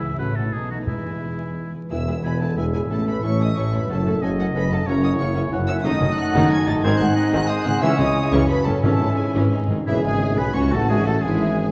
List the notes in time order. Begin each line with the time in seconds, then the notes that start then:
Already playing: C#2 C#3 B3 E4 G#4 B4 E5 G#5
0.01 A2
0.05 A3
0.10 E4
0.15 A3 F#4
0.19 A1 A2 C#4 B4 C#5 F#5
0.35 B2 E4 A4
0.39 A3
0.44 D#4
0.48 B1 B4
0.52 B2 A3 D#4 G#4 B4 A5
0.69 E3 F#4
0.74 G#3
0.78 E4
0.83 E2 B4
0.87 E1 E2 G#3 E4 G#5
1.74 E3
1.78 G#3
1.83 E4
1.87 E1 E2 G#3 E4 B4 E6
1.91 E3 G#3 B3 G#4 B4 E5
2.07 G#3 E4 G#4 B4
2.24 E1 E2 G#3 E4 G#4 B4 G#5 B5
2.41 G#3 E4 G#4 A4 B4 A5
2.57 E1 E2 G#3 E4 G#4 B4 E5 G#5
2.73 A2 G#3 E4 G#4 B4 G#5
2.77 A3
2.82 E4
2.86 A1 A2 A3 C#4 C#5
2.91 A1 A3 C#4 E4 A4 A5
3.07 A3 C#4 E4 A4 B4 B5
3.23 A1 A2 A3 C#4 E4 A4 C#5 C#6
3.39 A3 C#4 E4 A4 D#5 D#6
3.56 A1 A2 A3 C#4 E4 A4 C#5 C#6
3.72 F#2 A3 C#4 E4 A4 B4 B5
3.76 C#4
3.81 F#4
3.89 F#1 F#2 C#3 F#3 A3 C#4 F#4 A4 A5
4.06 A3 C#4 F#4 A4
4.22 F#1 F#2 A3 C#4 F#4 G#4 A4 D#5 G#5
4.38 A3 C#4 F#4 A4 F#5
4.53 F#1 F#2 A3 C#4 F#4 A4 B4 B5
4.69 F#2 A3 C#4 F#4 A4 A5
4.74 C#4
4.78 F#4
4.83 C#5 E5
4.87 F#1 F#2 E3 C#4 E4 F#4 A#4 C#5 A#5
5.03 E3 C#4 F#4 C#5 D#5 D#6
5.19 F#1 F#2 E3 C#4 F#4 C#5 C#6
5.35 E3 C#4 F#4 C#5
5.52 F#1 F#2 E3 C#4 F#4 C#5 F#5
5.67 F#2 E3 C#4 F#4 C#5 E5 E6
5.71 D#4
5.76 A4
5.80 D#5 D#6
5.84 F#1 F#2 D#3 F#3 A3 D#4 F#4 A4 D#5
6.01 F#1 F#2 D#3 C#4
6.18 F#5 F#6
6.34 F#1 F#2 D#3 D#4
6.51 G#5 G#6
6.66 F#1 F#2 G#2 D#3 D#4 A5 A6
6.71 D#4
6.75 G#4
6.80 G#1 G#3 D#4 G#4 C5
6.84 G#1 G#2 D#3 C4 C5 G#5 G#6
7.00 G#1 G#2 D#3 A3 F#5 F#6
7.15 D#5
7.33 G#1 G#2 D#3 C4 F#5 F#6
7.49 C5 D#5 D#6
7.64 G#1 G#2 C#3 D#3 C4 F#5 F#6
7.69 C#4
7.73 G#4
7.78 C#2 C#3 E3 C#4 C#5
7.82 C#2 C#3 C#4 E4 C#5 E5 E6
7.98 C#2 C#3 E3 B3 D#5 D#6
8.31 C#2 F#2 C#3 E3 C#4 C#5 C#6
8.36 C#4
8.41 F#4
8.45 C#5
8.49 F#3 F#4 A4 B4 B5
8.66 F#1 F#2 G#2 F#3 C#4 A4 A5
8.70 C#4
8.75 E4
8.79 G#1 C#4 E4 C#5 E5
8.83 G#1 G#2 E3 G#3 E4 A4 A5
9.00 G#1 G#2 E3 B3
9.18 G#4 G#5
9.35 G#1 G#2 E3 C#4
9.39 C4
9.44 D#4
9.48 C4 D#4 D#5
9.53 G#2 D#4 G#4
9.61 G#2
9.68 G#1 G#2 C#3 D#3 C4
9.74 G#2 C#4
9.78 E4
9.83 E1 E3 E4 G#4 C#5
9.87 E1 E4 C#5 E5, tam-tam
10.04 G#1 G#3 G#4 E5 G#5
10.37 B1 B3 B4 G#5 B5
10.55 C#2 C#4 F#4 C#5 G#5 C#6
10.72 A1 E3 A3 A4 F#5 A5
10.77 C#4
10.81 E4
10.86 G#3 G#4 C#5
10.90 G#1 G#4 E5 G#5
11.06 A1 A3 A4 F#5 A5
11.21 G#1 G#3 E4 G#4 E5 G#5
11.58 G#4